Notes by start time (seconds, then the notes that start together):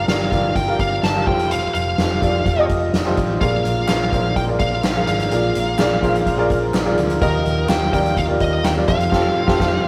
Already playing: G2 G3 D4 F4 G4 A#4 D5 A5
0.07 G1 F4 G4 A#4 D5 F5, snare, closed hi-hat
0.31 G1 F4 G4 A#4 D5, kick, closed hi-hat
0.55 G1 G5, kick, closed hi-hat
0.66 F4 G4 A#4 F5
0.79 G1 F5, kick, closed hi-hat
1.03 G1 A5, snare, closed hi-hat
1.14 F4 G4 A#4 F5
1.26 F1 A3 F4 G4 A4 C5 G5, kick, crash
1.39 closed hi-hat
1.51 F5, closed hi-hat
1.74 F1 F5, closed hi-hat
1.98 F1 F4 G4 A4 C5, snare, closed hi-hat
2.22 F1 F4 G4 A4 D5, kick, closed hi-hat
2.46 F1, kick, closed hi-hat
2.57 F4 G4 A4 D#5
2.69 F1, kick, closed hi-hat
2.94 F1, snare, closed hi-hat
3.05 F4 G4 A4 C5, snare
3.17 A1, kick, closed hi-hat
3.41 A#1 A#2 G#3 A#3 D4 F4 G#4 A#4 D5 F5, kick, closed hi-hat
3.65 A#1, closed hi-hat
3.88 A#1 F4 G#4 A#4 C5 F5, snare, clap, closed hi-hat
4.12 A#1 F4 G#4 A#4 C5, kick, closed hi-hat
4.36 A#1 G5, kick, closed hi-hat
4.48 F4 G#4 A#4 D5
4.59 A#1 F5, kick, closed hi-hat
4.84 A#1, snare, clap, closed hi-hat
4.95 F4 G#4 A#4 F5
5.07 G#1 F5, closed hi-hat
5.20 closed hi-hat
5.31 A#1 A#2 F4 G#4 A#4 D5, closed hi-hat
5.55 A#1, closed hi-hat
5.78 A#1 F4 G#4 A#4 D5, snare, clap, closed hi-hat
6.02 A#1 F4 G#4 A#4 C5, kick, closed hi-hat
6.15 closed hi-hat
6.26 A#1, kick, closed hi-hat
6.37 F4 G#4 A#4 D5
6.50 A#1, kick, closed hi-hat
6.74 A#1, snare, clap, closed hi-hat
6.85 F4 G#4 A#4 D5, snare
6.97 D2, closed hi-hat
7.10 closed hi-hat
7.20 D#2 D#3 D#4 F4 G4 A#4 D#5, kick, closed hi-hat
7.45 D#2, closed hi-hat
7.68 D#2 F4 G4 A#4 F5 G5, snare, clap, closed hi-hat
7.92 D#2 F4 G4 A#4 D5 G5, kick, closed hi-hat
8.05 closed hi-hat
8.17 D#2 F5, kick, closed hi-hat
8.28 F4 G4 A#4 D5
8.40 D#2 D#5, kick, closed hi-hat
8.64 D#2 G5, snare, clap, closed hi-hat
8.76 F4 G4 A#4 D5
8.88 F2 A3 F4 G4 A4 C5 F5, kick, closed hi-hat
9.00 closed hi-hat
9.11 F1 F4 G4 A4 C5, kick, snare, crash
9.47 F1 F4 G4 A4 C5, kick, snare
9.59 F1 F4 G4 A4 C5, kick, snare